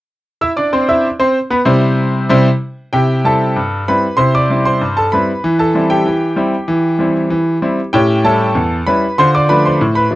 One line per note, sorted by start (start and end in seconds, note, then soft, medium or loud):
0.41 0.50 E4 medium
0.41 0.50 E5 medium
0.41 0.50 E6 medium
0.56 0.66 D4 medium
0.56 0.66 D5 medium
0.56 0.66 D6 medium
0.73 0.82 C4 medium
0.73 0.82 C5 medium
0.73 0.82 C6 medium
0.89 1.06 E4 medium
0.89 1.06 E5 medium
0.89 1.06 E6 medium
1.20 1.37 C4 medium
1.20 1.37 C5 medium
1.20 1.37 C6 medium
1.50 1.59 B3 medium
1.50 1.59 B4 medium
1.50 1.60 B5 medium
1.65 1.83 C3 medium
1.65 1.84 G3 medium
1.65 1.83 E4 medium
1.65 1.83 C5 medium
2.29 2.47 C3 medium
2.29 2.47 G3 medium
2.29 2.47 E4 medium
2.29 2.47 C5 medium
2.93 3.20 C3 medium
2.93 3.12 E4 soft
2.93 3.22 G4 medium
2.93 3.24 G5 medium
3.24 3.42 G3 soft
3.24 3.42 C4 soft
3.24 3.43 E4 soft
3.24 3.84 A4 medium
3.24 3.87 A5 medium
3.56 3.82 G2 medium
3.88 4.05 G3 soft
3.88 4.05 C4 soft
3.88 4.05 E4 soft
3.88 4.17 B4 medium
3.88 4.19 B5 medium
4.17 4.44 C3 medium
4.17 4.36 E4 medium
4.17 4.32 C5 medium
4.17 4.33 C6 medium
4.35 4.63 D5 medium
4.35 4.65 D6 medium
4.50 4.67 G3 soft
4.50 4.67 C4 soft
4.50 4.68 E4 medium
4.65 4.95 C5 medium
4.65 4.96 C6 medium
4.81 5.07 G2 medium
4.97 5.12 A4 medium
4.97 5.12 A5 medium
5.12 5.30 G3 soft
5.12 5.30 C4 soft
5.12 5.30 E4 soft
5.12 5.56 B4 medium
5.12 5.58 B5 medium
5.44 5.70 E3 medium
5.59 5.88 A4 medium
5.59 5.90 A5 medium
5.75 5.91 G3 soft
5.75 5.92 C4 soft
5.75 5.92 E4 soft
5.90 7.88 G4 medium
5.90 7.91 G5 medium
6.06 6.32 E3 medium
6.36 6.53 G3 medium
6.36 6.54 C4 soft
6.36 6.54 E4 medium
6.68 6.94 E3 medium
6.99 7.16 G3 soft
6.99 7.17 C4 soft
6.99 7.17 E4 medium
7.30 7.56 E3 medium
7.62 7.79 G3 soft
7.62 7.79 C4 medium
7.62 7.79 E4 medium
7.93 8.19 A2 medium
7.93 8.11 C#4 medium
7.93 8.22 G4 medium
7.93 8.23 G5 medium
8.24 8.41 G3 soft
8.24 8.41 C#4 medium
8.24 8.41 E4 medium
8.24 8.82 A4 medium
8.24 8.86 A5 medium
8.55 8.81 E2 medium
8.87 9.04 G3 soft
8.87 9.04 C#4 soft
8.87 9.05 E4 medium
8.87 9.15 B4 medium
8.87 9.17 B5 medium
9.18 9.44 D3 medium
9.18 9.36 F4 medium
9.18 9.32 C5 medium
9.18 9.33 C6 medium
9.35 9.48 D5 medium
9.35 9.49 D6 medium
9.49 9.66 F3 soft
9.49 9.66 A3 soft
9.49 9.66 D4 medium
9.49 9.63 B4 medium
9.49 9.64 B5 medium
9.65 9.94 C5 medium
9.65 9.95 C6 medium
9.81 10.06 A2 medium
9.95 10.15 B4 medium
9.95 10.15 B5 medium
10.11 10.15 F3 soft
10.11 10.15 A3 soft
10.11 10.15 D4 soft